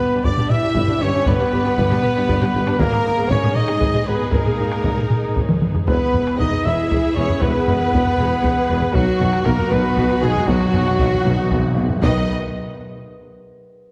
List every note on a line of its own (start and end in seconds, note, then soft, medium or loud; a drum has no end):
0.00 0.21 B3 loud
0.00 2.76 B3 medium
0.00 2.80 D4 medium
0.00 2.80 G4 medium
0.00 0.05 G4 medium
0.00 0.21 B4 loud
0.00 0.21 B4 medium
0.00 0.27 B4 loud
0.00 0.05 B4 medium
0.11 0.17 G2 medium
0.11 0.18 D4 medium
0.11 0.18 G4 medium
0.24 0.29 G1 loud
0.24 0.30 G1 medium
0.24 0.29 G2 loud
0.24 0.50 D4 loud
0.24 0.31 B4 medium
0.24 0.50 D5 medium
0.24 0.52 D5 medium
0.24 0.51 D5 medium
0.24 0.31 D5 medium
0.24 taiko medium
0.36 0.42 G2 medium
0.36 0.43 D4 medium
0.36 0.43 G4 medium
0.36 taiko low-mid medium
0.50 1.02 E4 loud
0.50 1.00 E5 loud
0.50 1.04 E5 medium
0.50 taiko low-mid medium
0.63 0.68 G2 medium
0.63 0.69 D4 medium
0.63 0.69 G4 medium
0.75 0.81 G1 loud
0.75 0.82 G1 medium
0.75 0.80 G2 loud
0.75 0.82 B4 loud
0.75 0.81 D5 medium
0.75 taiko medium
0.87 0.93 G2 medium
0.87 0.94 D4 medium
0.87 0.94 G4 medium
0.87 taiko low-mid medium
1.00 1.06 G1 medium
1.00 1.07 G1 medium
1.00 1.06 G2 medium
1.00 1.27 C#4 loud
1.00 1.06 G4 medium
1.00 1.07 B4 medium
1.00 1.27 C#5 loud
1.00 1.29 C#5 loud
1.14 1.19 G2 medium
1.14 1.19 D4 medium
1.14 1.19 G4 medium
1.26 1.32 G1 loud
1.26 1.33 G1 loud
1.26 1.32 G2 loud
1.26 2.80 B3 loud
1.26 2.79 B4 loud
1.26 1.32 B4 medium
1.26 2.81 B4 loud
1.26 2.80 B4 loud
1.26 1.32 D5 loud
1.26 taiko loud
1.38 1.45 G2 medium
1.38 1.45 D4 medium
1.38 1.44 G4 medium
1.38 taiko low-mid medium
1.52 1.57 G1 medium
1.52 1.58 G1 medium
1.52 1.57 G2 medium
1.52 1.57 G4 medium
1.52 1.57 B4 medium
1.64 1.70 G2 medium
1.64 1.70 D4 medium
1.64 1.69 G4 medium
1.77 1.82 G1 loud
1.77 1.84 G1 loud
1.77 1.83 G2 loud
1.77 1.82 B4 loud
1.77 1.82 D5 loud
1.77 taiko medium
1.90 1.96 G2 medium
1.90 1.95 D4 medium
1.90 1.95 G4 medium
1.90 taiko low-mid medium
2.03 taiko low-mid medium
2.15 2.21 G2 medium
2.15 2.21 D4 medium
2.15 2.21 G4 medium
2.28 2.33 G1 loud
2.28 2.34 G1 loud
2.28 2.33 G2 loud
2.28 2.34 B4 loud
2.28 2.34 D5 loud
2.28 taiko medium
2.41 2.46 G2 medium
2.41 2.46 D4 medium
2.41 2.46 G4 medium
2.41 taiko low-mid medium
2.53 2.59 G1 loud
2.53 2.59 G1 medium
2.53 2.58 G2 medium
2.53 2.59 G4 loud
2.53 2.59 B4 medium
2.66 2.72 G2 medium
2.66 2.71 D4 loud
2.66 2.71 G4 medium
2.66 taiko rim medium
2.78 2.84 G#1 loud
2.78 2.85 G#1 loud
2.78 2.84 G#2 loud
2.78 5.88 G#3 loud
2.78 3.29 A#3 loud
2.78 5.89 D#4 loud
2.78 5.86 G#4 loud
2.78 2.84 G#4 loud
2.78 3.30 A#4 loud
2.78 3.29 A#4 loud
2.78 2.84 B4 loud
2.78 taiko loud
2.92 2.97 G#2 medium
2.92 2.97 B3 medium
2.92 2.97 G#4 medium
2.92 taiko low-mid medium
3.04 3.09 G#1 medium
3.04 3.10 G#1 medium
3.04 3.10 G#2 medium
3.04 3.10 D#4 medium
3.04 3.10 A#4 medium
3.18 3.23 G#2 medium
3.18 3.23 B3 medium
3.18 3.23 G#4 medium
3.30 3.35 G#1 loud
3.30 3.35 G#2 loud
3.30 3.55 C#4 loud
3.30 3.36 G#4 loud
3.30 3.36 B4 loud
3.30 3.55 C#5 loud
3.30 3.56 C#5 loud
3.30 3.58 C#5 loud
3.30 taiko medium
3.42 3.48 G#2 medium
3.42 3.48 B3 medium
3.42 3.48 G#4 medium
3.42 taiko low-mid medium
3.55 4.07 D#4 loud
3.55 4.07 D#5 loud
3.55 4.06 D#5 loud
3.55 4.09 D#5 medium
3.55 taiko low-mid medium
3.68 3.74 G#2 medium
3.68 3.73 B3 medium
3.68 3.73 G#4 medium
3.68 taiko rim soft
3.81 3.86 G#1 medium
3.81 3.86 G#2 medium
3.81 3.87 G#4 medium
3.81 3.86 B4 medium
3.81 taiko medium
3.93 3.99 G#2 medium
3.93 4.00 B3 medium
3.93 4.00 G#4 medium
3.93 taiko low-mid medium
4.06 4.12 G#1 medium
4.06 4.13 G#1 medium
4.06 4.12 G#2 medium
4.06 4.34 B3 medium
4.06 4.13 D#4 medium
4.06 4.13 A#4 medium
4.06 4.33 B4 medium
4.06 4.34 B4 medium
4.06 4.33 B4 medium
4.20 4.25 G#2 medium
4.20 4.26 B3 medium
4.20 4.26 G#4 medium
4.32 4.38 G#1 medium
4.32 4.38 G#2 medium
4.32 5.60 A#3 medium
4.32 4.39 G#4 medium
4.32 5.62 A#4 medium
4.32 5.63 A#4 medium
4.32 4.39 B4 medium
4.32 taiko loud
4.45 4.51 G#2 medium
4.45 4.52 B3 medium
4.45 4.51 G#4 medium
4.45 taiko low-mid medium
4.58 4.64 G#1 medium
4.58 4.63 G#2 medium
4.58 4.65 D#4 medium
4.58 4.65 A#4 medium
4.71 4.77 G#2 medium
4.71 4.77 B3 medium
4.71 4.77 G#4 medium
4.71 taiko rim soft
4.83 4.89 G#1 medium
4.83 4.90 G#2 medium
4.83 4.90 G#4 medium
4.83 4.90 B4 medium
4.83 taiko medium
4.97 5.03 G#2 medium
4.97 5.02 B3 medium
4.97 5.03 G#4 medium
4.97 taiko low-mid medium
5.10 5.34 D#4 medium
5.10 taiko low-mid medium
5.24 5.29 G#2 soft
5.35 5.41 G#1 medium
5.35 5.42 G#1 medium
5.35 5.42 G#2 medium
5.35 5.62 C#4 medium
5.35 taiko medium
5.49 5.55 G#2 medium
5.49 taiko mid loud
5.62 5.67 G#1 medium
5.62 5.68 G#2 medium
5.62 5.87 B3 medium
5.62 taiko mid medium
5.75 5.80 G#2 medium
5.75 taiko low loud
5.87 5.98 E1 loud
5.87 5.96 E1 medium
5.87 5.95 E2 medium
5.87 11.99 B3 medium
5.87 6.36 B3 loud
5.87 8.90 E4 loud
5.87 8.90 G#4 medium
5.87 6.36 B4 medium
5.87 11.99 B4 medium
5.87 6.36 B4 medium
5.87 taiko loud
6.13 6.24 E1 medium
6.13 6.22 E1 medium
6.13 6.22 E2 medium
6.13 taiko low medium
6.27 taiko rim soft
6.39 6.49 E1 medium
6.39 6.48 E1 medium
6.39 6.47 E2 medium
6.39 6.65 D#4 loud
6.39 6.67 D#5 loud
6.39 6.65 D#5 medium
6.39 6.66 D#5 medium
6.39 6.66 D#5 loud
6.39 taiko medium
6.52 taiko low medium
6.65 6.75 E1 medium
6.65 6.73 E1 medium
6.65 6.73 E2 medium
6.65 7.17 E4 loud
6.65 7.38 G#4 medium
6.65 7.15 E5 medium
6.65 7.18 E5 medium
6.65 7.15 E5 medium
6.65 7.17 E5 medium
6.90 7.00 E1 medium
6.90 6.99 E1 medium
6.90 6.99 E2 medium
6.90 taiko medium
7.15 7.26 E1 medium
7.15 7.24 E2 medium
7.15 7.42 C#4 loud
7.15 7.41 C#5 medium
7.15 7.41 C#5 loud
7.15 7.43 C#5 medium
7.15 7.42 C#5 loud
7.29 taiko low medium
7.41 7.52 E1 medium
7.41 7.51 E1 loud
7.41 7.50 E2 medium
7.41 8.94 B3 loud
7.41 8.18 B4 medium
7.41 8.95 B4 medium
7.41 8.97 B4 medium
7.41 8.95 B4 loud
7.41 8.92 B4 loud
7.41 taiko loud
7.67 7.78 E1 medium
7.67 7.76 E1 medium
7.67 7.76 E2 medium
7.67 taiko low medium
7.92 8.03 E1 medium
7.92 8.01 E1 medium
7.92 8.01 E2 medium
7.92 taiko medium
8.05 taiko low medium
8.18 8.26 E1 medium
8.18 8.29 E1 medium
8.18 8.27 E2 medium
8.18 8.95 G#4 loud
8.43 8.51 E1 medium
8.43 8.54 E1 medium
8.43 8.52 E2 medium
8.43 taiko medium
8.69 8.77 E1 medium
8.69 8.80 E1 medium
8.69 8.77 E2 medium
8.82 taiko low medium
8.93 9.02 B1 loud
8.93 9.05 B1 loud
8.93 9.02 B2 medium
8.93 9.45 F#3 loud
8.93 12.02 D#4 loud
8.93 9.44 F#4 loud
8.93 9.45 F#4 loud
8.93 12.02 F#4 medium
8.93 9.44 F#4 loud
8.93 11.25 F#4 loud
8.93 9.47 F#4 loud
8.93 taiko loud
9.09 9.15 B2 soft
9.20 9.30 B1 medium
9.20 9.28 B1 medium
9.20 9.28 B2 loud
9.20 taiko low medium
9.32 9.39 B2 medium
9.32 taiko rim soft
9.40 9.47 B2 medium
9.44 9.55 B1 loud
9.44 9.54 B1 loud
9.44 9.53 B2 medium
9.44 9.70 A#3 loud
9.44 9.71 A#4 loud
9.44 9.73 A#4 loud
9.44 9.71 A#4 loud
9.44 taiko medium
9.55 9.62 B2 medium
9.55 taiko low medium
9.69 9.81 B1 loud
9.69 9.79 B1 loud
9.69 9.76 B2 medium
9.69 9.79 B2 loud
9.69 10.21 B3 loud
9.69 10.21 B4 loud
9.69 10.22 B4 loud
9.69 10.21 B4 loud
9.69 10.21 B4 medium
9.78 9.84 B2 medium
9.85 9.91 B2 medium
9.92 9.99 B2 medium
9.97 10.07 B1 medium
9.97 10.05 B1 medium
9.97 10.05 B2 loud
9.97 10.06 B2 medium
9.97 taiko medium
10.07 10.14 B2 medium
10.07 taiko rim medium
10.15 10.21 B2 medium
10.21 10.32 B1 loud
10.21 10.31 B1 loud
10.21 10.30 B2 loud
10.21 10.29 B2 medium
10.21 10.48 G#3 loud
10.21 10.47 G#4 loud
10.21 10.48 G#4 loud
10.21 10.49 G#4 loud
10.21 10.48 G#4 loud
10.30 10.36 B2 medium
10.36 10.44 B2 medium
10.36 taiko low medium
10.45 10.58 B1 loud
10.45 10.57 B1 loud
10.45 10.52 B2 medium
10.45 10.56 B2 loud
10.45 12.03 F#3 loud
10.45 11.99 F#4 loud
10.45 12.03 F#4 loud
10.45 12.00 F#4 loud
10.45 taiko loud
10.53 10.59 B2 medium
10.60 10.67 B2 medium
10.60 taiko rim soft
10.68 10.74 B2 medium
10.73 10.83 B1 loud
10.73 10.82 B1 medium
10.73 10.81 B2 loud
10.73 10.82 B2 medium
10.73 taiko low medium
10.83 10.89 B2 loud
10.83 taiko rim soft
10.90 10.97 B2 medium
10.98 11.09 B1 loud
10.98 11.08 B1 loud
10.98 11.04 B2 medium
10.98 11.08 B2 medium
10.98 taiko loud
11.06 11.12 B2 medium
11.12 11.20 B2 loud
11.12 taiko low medium
11.21 11.35 B1 loud
11.21 11.27 B2 loud
11.25 11.33 B1 loud
11.25 11.33 B2 loud
11.25 11.35 B2 loud
11.25 11.64 D#4 medium
11.36 11.42 B2 loud
11.44 11.50 B2 loud
11.51 11.62 B1 medium
11.51 11.60 B1 medium
11.51 11.59 B2 medium
11.51 11.57 B2 loud
11.51 taiko medium
11.59 11.65 B2 loud
11.66 11.73 B2 loud
11.74 11.88 B1 medium
11.74 11.86 B1 medium
11.74 11.80 B2 loud
11.74 11.85 B2 medium
11.81 11.87 B2 loud
11.88 11.95 B2 loud
11.88 taiko low medium
11.96 12.02 B2 loud
12.03 12.24 B1 loud
12.03 12.32 B1 loud
12.03 12.31 B2 loud
12.03 12.27 B2 loud
12.03 12.24 D#3 loud
12.03 12.32 B3 loud
12.03 12.31 D#4 medium
12.03 12.32 D#4 medium
12.03 12.32 F#4 loud
12.03 12.32 B4 medium
12.03 12.32 B4 loud
12.03 12.32 D#5 loud
12.03 12.25 D#5 loud
12.03 12.32 D#5 medium
12.03 12.32 D#5 loud
12.03 taiko loud